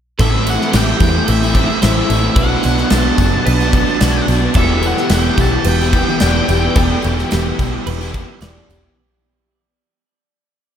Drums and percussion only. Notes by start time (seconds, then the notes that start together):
0.19 kick, crash
0.46 tambourine, crash
0.61 snare
0.73 snare, tambourine, crash
1.00 kick, tambourine, crash
1.28 crash
1.43 tambourine
1.55 kick, crash
1.70 tambourine
1.82 snare, tambourine, crash
2.10 tambourine, crash
2.36 kick, crash
2.63 tambourine, crash
2.77 snare
2.90 snare, tambourine, crash
3.18 kick, tambourine, crash
3.46 crash
3.60 tambourine
3.73 kick, crash
3.89 tambourine
4.01 snare, tambourine, crash
4.28 tambourine, crash
4.54 kick, crash
4.83 tambourine, crash
4.97 snare
5.09 snare, tambourine, crash
5.38 kick, tambourine, crash
5.64 crash
5.81 tambourine
5.93 kick, crash
6.09 tambourine
6.20 snare, tambourine, crash
6.48 tambourine, crash
6.76 kick, tambourine, crash
6.90 tambourine
7.02 tambourine, crash
7.16 snare, tambourine
7.31 snare, tambourine, crash
7.59 kick, tambourine, crash
7.86 tambourine, crash
8.01 tambourine
8.14 kick, crash
8.41 snare, tambourine, crash
8.70 tambourine, crash